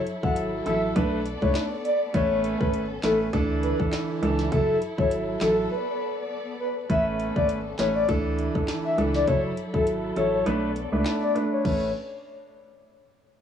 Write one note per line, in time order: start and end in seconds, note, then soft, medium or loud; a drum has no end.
0.00 0.94 F#3 medium
0.00 0.93 E4 medium
0.00 2.12 A4 loud
0.07 closed hi-hat medium
0.23 0.60 G#1 loud
0.23 0.63 F#3 medium
0.23 0.63 E4 medium
0.23 0.63 A4 medium
0.23 0.35 F#5 medium
0.23 kick loud
0.36 closed hi-hat loud
0.66 0.92 A1 loud
0.66 0.94 F#3 medium
0.66 0.94 E4 medium
0.66 0.94 A4 medium
0.66 0.81 E5 medium
0.66 closed hi-hat medium
0.95 1.36 B1 loud
0.95 1.18 A3 loud
0.95 3.31 B3 medium
0.95 1.18 D4 medium
0.95 1.10 B4 medium
0.95 1.18 B4 loud
0.95 2.13 D5 medium
0.95 kick loud
0.95 closed hi-hat medium
1.25 closed hi-hat medium
1.42 1.53 C#2 medium
1.42 1.63 A3 medium
1.42 1.63 D4 medium
1.42 1.63 B4 medium
1.42 1.54 C#5 medium
1.42 kick loud
1.55 snare loud
1.55 clap medium
1.55 closed hi-hat medium
1.85 1.99 D5 medium
1.85 closed hi-hat medium
2.14 2.54 A1 loud
2.14 2.57 A3 loud
2.14 3.32 C#4 medium
2.14 2.57 C#4 medium
2.14 3.32 A4 loud
2.14 2.57 B4 loud
2.14 2.41 C#5 loud
2.14 kick loud
2.14 closed hi-hat medium
2.44 closed hi-hat medium
2.61 2.98 G#1 medium
2.61 2.81 A3 medium
2.61 2.81 C#4 medium
2.61 2.72 B4 medium
2.61 2.82 B4 medium
2.61 kick loud
2.74 closed hi-hat medium
3.03 3.29 A1 loud
3.03 3.26 A3 medium
3.03 3.26 C#4 medium
3.03 3.18 A4 medium
3.03 3.26 B4 medium
3.03 snare loud
3.03 clap loud
3.03 closed hi-hat medium
3.33 3.73 D2 loud
3.33 4.51 D3 medium
3.33 3.75 E3 medium
3.33 4.51 A3 medium
3.33 3.76 D4 medium
3.33 5.68 E4 medium
3.33 3.76 A4 loud
3.33 kick loud
3.33 closed hi-hat medium
3.63 3.78 B4 medium
3.63 closed hi-hat medium
3.79 3.91 A1 medium
3.79 4.19 E3 medium
3.79 4.19 D4 medium
3.79 4.19 A4 medium
3.79 kick loud
3.93 snare loud
3.93 clap medium
3.93 closed hi-hat medium
4.22 4.48 C#2 medium
4.22 4.50 E3 medium
4.22 4.50 D4 medium
4.22 4.50 A4 medium
4.22 closed hi-hat medium
4.39 snare medium
4.52 4.78 F#1 loud
4.52 4.75 F#3 medium
4.52 5.70 F#3 medium
4.52 4.75 E4 medium
4.52 6.87 A4 medium
4.52 4.78 A4 loud
4.52 4.75 A4 loud
4.52 kick loud
4.52 closed hi-hat medium
4.82 closed hi-hat medium
4.98 5.35 G#1 loud
4.98 5.38 F#3 medium
4.98 5.38 E4 medium
4.98 5.38 A4 medium
4.98 5.10 C#5 medium
4.98 kick loud
5.11 closed hi-hat medium
5.41 5.67 A1 loud
5.41 5.69 F#3 medium
5.41 5.69 E4 medium
5.41 5.56 A4 medium
5.41 5.69 A4 medium
5.41 snare loud
5.41 clap loud
5.41 closed hi-hat medium
5.71 6.88 B3 medium
5.71 6.14 B4 loud
5.71 6.89 D5 medium
6.60 6.75 B4 medium
6.89 7.30 A1 loud
6.89 7.32 A3 medium
6.89 8.07 B3 medium
6.89 7.32 C#4 medium
6.89 8.07 C#4 medium
6.89 8.07 A4 medium
6.89 7.32 B4 loud
6.89 7.04 E5 loud
6.89 kick loud
6.89 closed hi-hat medium
7.20 closed hi-hat medium
7.36 7.73 G#1 medium
7.36 7.57 A3 medium
7.36 7.57 C#4 medium
7.36 7.57 B4 medium
7.36 7.48 D5 medium
7.36 kick loud
7.49 closed hi-hat medium
7.79 8.05 A1 medium
7.79 8.01 A3 medium
7.79 8.01 C#4 medium
7.79 8.02 B4 medium
7.79 7.93 C#5 medium
7.79 snare loud
7.79 clap medium
7.79 closed hi-hat medium
7.96 8.07 D5 medium
8.08 8.49 D2 loud
8.08 9.26 D3 medium
8.08 8.51 E3 medium
8.08 9.26 A3 medium
8.08 8.51 D4 medium
8.08 10.44 E4 medium
8.08 8.51 A4 loud
8.08 kick loud
8.08 closed hi-hat medium
8.38 closed hi-hat medium
8.55 8.66 A1 medium
8.55 8.94 E3 medium
8.55 8.95 D4 medium
8.55 8.95 A4 medium
8.55 kick medium
8.68 snare loud
8.68 clap medium
8.68 closed hi-hat medium
8.85 8.96 E5 medium
8.98 9.23 C#2 medium
8.98 9.25 E3 medium
8.98 9.25 D4 medium
8.98 9.26 A4 medium
8.98 closed hi-hat medium
9.14 9.26 D5 medium
9.14 snare medium
9.27 9.53 F#1 loud
9.27 9.50 F#3 medium
9.27 10.45 F#3 medium
9.27 9.50 E4 medium
9.27 11.63 A4 loud
9.27 9.50 A4 loud
9.27 9.42 C#5 loud
9.27 kick loud
9.27 closed hi-hat medium
9.57 closed hi-hat medium
9.73 10.11 G#1 loud
9.73 10.13 F#3 medium
9.73 10.13 E4 medium
9.73 9.85 A4 medium
9.73 10.14 A4 medium
9.73 kick loud
9.87 closed hi-hat medium
10.16 10.42 A1 loud
10.16 10.44 F#3 medium
10.16 10.44 E4 medium
10.16 10.44 A4 medium
10.16 10.31 C#5 medium
10.16 closed hi-hat medium
10.33 10.45 C#5 medium
10.46 10.86 B1 loud
10.46 10.69 A3 medium
10.46 11.64 B3 medium
10.46 10.69 D4 medium
10.46 10.69 B4 loud
10.46 11.64 D5 medium
10.46 closed hi-hat medium
10.76 closed hi-hat medium
10.92 11.04 C#2 medium
10.92 11.32 A3 medium
10.92 11.32 D4 medium
10.92 11.32 B4 medium
11.06 snare loud
11.06 clap medium
11.06 closed hi-hat medium
11.22 11.34 D5 medium
11.35 11.63 A3 medium
11.35 11.63 D4 medium
11.35 11.63 B4 medium
11.35 closed hi-hat medium
11.52 11.64 C#5 medium
11.65 11.93 A1 loud
11.65 11.88 A3 medium
11.65 11.88 C#4 medium
11.65 11.93 C#4 medium
11.65 11.93 A4 medium
11.65 11.93 B4 medium
11.65 11.88 B4 loud
11.65 11.93 C#5 medium
11.65 kick loud
11.65 crash medium